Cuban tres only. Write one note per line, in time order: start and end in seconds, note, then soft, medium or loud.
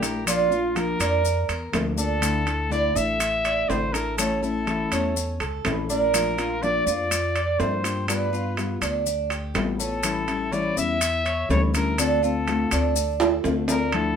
0.03 0.26 A#4 medium
0.27 0.51 D4 medium
0.52 0.99 F4 medium
1.00 1.48 D4 medium
1.49 1.97 A#4 medium
1.98 2.45 D4 medium
2.47 2.71 A4 medium
2.71 2.95 D4 medium
2.95 3.43 A4 medium
3.44 3.92 D5 medium
3.94 4.18 A4 medium
4.18 4.42 C#4 medium
4.43 4.90 E4 medium
4.92 5.39 C#4 medium
5.40 5.88 A4 medium
5.90 6.37 D4 medium
6.38 6.62 F4 medium
6.63 6.86 D4 medium
6.87 7.34 F4 medium
7.35 7.83 D5 medium
7.84 8.08 G4 medium
8.08 8.32 D4 medium
8.33 8.80 F4 medium
8.81 9.29 D4 medium
9.30 9.78 G4 medium
9.79 10.27 C#4 medium
10.28 10.52 E4 medium
10.52 10.76 C#4 medium
10.77 11.24 E4 medium
11.25 11.73 C#5 medium
11.74 11.98 A4 medium
11.98 12.22 D4 medium
12.23 12.70 F4 medium
12.72 13.19 D4 medium
13.20 13.67 A4 medium
13.69 13.92 D4 medium